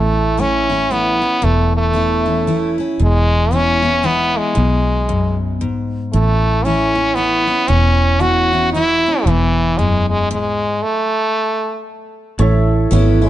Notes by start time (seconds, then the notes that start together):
Already playing: A1 A2 A3
0.38 E3 A3 C#4 E4
0.70 C#4 E4
0.91 E3 A3 B3 C#4 E4
1.22 C#4 E4
1.42 E1 E2 A3
1.77 A3
1.93 E3 A3 C#4 E4
2.26 C#4 E4
2.47 E3 A3 C#4 E4
2.78 C#4 E4
2.99 E1 E2 G#3
3.51 E3 G#3 B3 C#4 E4
3.82 B3 E4
4.03 E3 G#3 B3 E4
4.37 G#3
4.55 B1 B2
5.09 F#2
5.61 G#2
6.13 A1 A2 A3
6.65 E3 A3 C#4 E4
6.95 C#4 E4
7.15 E3 A3 B3 C#4 E4
7.47 C#4 E4
7.68 E1 E2 C#4
8.20 E3 A3 C#4 E4 F#4
8.53 C#4 E4
8.73 E3 A3 C#4 E4
9.08 C#4
9.25 E1 E2 E3
9.78 F#2 G#3
10.10 G#3
10.31 G#2 G#3
10.83 A3
12.39 A1 A2 E4 A4 C#5 E5
12.91 G#1 E3 B3 C#4 E4 A4 C#5
13.22 A3 C#4 E4